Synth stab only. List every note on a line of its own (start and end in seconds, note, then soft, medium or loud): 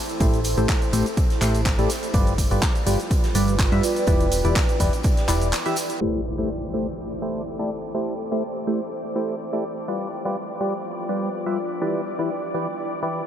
0.20 0.40 A3 medium
0.20 0.40 E4 medium
0.20 0.40 G4 medium
0.20 0.40 A4 medium
0.20 0.40 C5 loud
0.58 0.69 A3 medium
0.58 0.69 E4 medium
0.58 0.69 G4 medium
0.58 0.69 A4 medium
0.58 0.69 C5 loud
0.93 1.06 A3 medium
0.93 1.06 E4 medium
0.93 1.06 G4 medium
0.93 1.06 A4 medium
0.93 1.06 C5 medium
1.41 1.61 A3 medium
1.41 1.61 E4 medium
1.41 1.61 G4 medium
1.41 1.61 A4 medium
1.41 1.61 C5 medium
1.79 1.90 A3 medium
1.79 1.90 E4 medium
1.79 1.90 G4 medium
1.79 1.90 A4 medium
1.79 1.90 D5 loud
2.14 2.34 G3 medium
2.14 2.34 F4 medium
2.14 2.34 G4 medium
2.14 2.34 B4 medium
2.14 2.34 D5 loud
2.51 2.62 G3 medium
2.51 2.62 F4 medium
2.51 2.62 G4 medium
2.51 2.62 B4 medium
2.51 2.62 D5 loud
2.87 3.00 G3 medium
2.87 3.00 F4 medium
2.87 3.00 G4 medium
2.87 3.00 B4 medium
2.87 3.00 D5 medium
3.35 3.55 G3 medium
3.35 3.55 F4 medium
3.35 3.55 G4 medium
3.35 3.55 B4 medium
3.35 3.55 D5 loud
3.72 3.83 G3 medium
3.72 3.83 F4 medium
3.72 3.83 G4 medium
3.72 3.83 B4 medium
3.72 3.83 E5 loud
4.08 4.27 E3 medium
4.08 4.27 E4 medium
4.08 4.27 G4 medium
4.08 4.27 B4 medium
4.08 4.27 D5 loud
4.45 4.56 E3 medium
4.45 4.56 E4 medium
4.45 4.56 G4 medium
4.45 4.56 B4 medium
4.45 4.56 D5 loud
4.80 4.93 E3 medium
4.80 4.93 E4 medium
4.80 4.93 G4 medium
4.80 4.93 B4 medium
4.80 4.93 D5 medium
5.28 5.48 E3 medium
5.28 5.48 E4 medium
5.28 5.48 G4 medium
5.28 5.48 B4 medium
5.28 5.48 D5 loud
5.66 5.77 E3 medium
5.66 5.77 E4 medium
5.66 5.77 G4 medium
5.66 5.77 B4 medium
5.66 5.77 E5 loud
6.01 6.21 A3 medium
6.01 6.21 E4 medium
6.01 6.21 G4 medium
6.01 6.21 A4 medium
6.01 6.21 C5 loud
6.38 6.49 A3 medium
6.38 6.49 E4 medium
6.38 6.49 G4 medium
6.38 6.49 A4 medium
6.38 6.49 C5 medium
6.74 6.87 A3 medium
6.74 6.87 E4 medium
6.74 6.87 G4 medium
6.74 6.87 A4 medium
6.74 6.87 C5 medium
7.22 7.42 A3 medium
7.22 7.42 E4 medium
7.22 7.42 G4 medium
7.22 7.42 A4 medium
7.22 7.42 C5 medium
7.59 7.70 A3 medium
7.59 7.70 E4 medium
7.59 7.70 G4 medium
7.59 7.70 A4 medium
7.59 7.70 D5 loud
7.95 8.14 A3 medium
7.95 8.14 E4 medium
7.95 8.14 G4 medium
7.95 8.14 A4 medium
7.95 8.14 C5 medium
8.32 8.43 A3 medium
8.32 8.43 E4 medium
8.32 8.43 G4 medium
8.32 8.43 A4 medium
8.32 8.43 C5 medium
8.67 8.80 A3 medium
8.67 8.80 E4 medium
8.67 8.80 G4 medium
8.67 8.80 A4 medium
8.67 8.80 C5 medium
9.16 9.35 A3 medium
9.16 9.35 E4 medium
9.16 9.35 G4 medium
9.16 9.35 A4 medium
9.16 9.35 C5 medium
9.53 9.64 A3 medium
9.53 9.64 E4 medium
9.53 9.64 G4 medium
9.53 9.64 A4 medium
9.53 9.64 D5 loud
9.88 10.08 G3 medium
9.88 10.08 F4 medium
9.88 10.08 G4 medium
9.88 10.08 B4 medium
9.88 10.08 D5 medium
10.25 10.37 G3 medium
10.25 10.37 F4 medium
10.25 10.37 G4 medium
10.25 10.37 B4 medium
10.25 10.37 D5 loud
10.61 10.74 G3 medium
10.61 10.74 F4 medium
10.61 10.74 G4 medium
10.61 10.74 B4 medium
10.61 10.74 D5 medium
11.09 11.29 G3 medium
11.09 11.29 F4 medium
11.09 11.29 G4 medium
11.09 11.29 B4 medium
11.09 11.29 D5 medium
11.46 11.57 G3 medium
11.46 11.57 F4 medium
11.46 11.57 G4 medium
11.46 11.57 B4 medium
11.46 11.57 E5 loud
11.82 12.01 E3 medium
11.82 12.01 E4 medium
11.82 12.01 G4 medium
11.82 12.01 B4 medium
11.82 12.01 D5 medium
12.19 12.30 E3 medium
12.19 12.30 E4 medium
12.19 12.30 G4 medium
12.19 12.30 B4 medium
12.19 12.30 D5 medium
12.54 12.67 E3 medium
12.54 12.67 E4 medium
12.54 12.67 G4 medium
12.54 12.67 B4 medium
12.54 12.67 D5 medium
13.03 13.22 E3 medium
13.03 13.22 E4 medium
13.03 13.22 G4 medium
13.03 13.22 B4 medium
13.03 13.22 D5 medium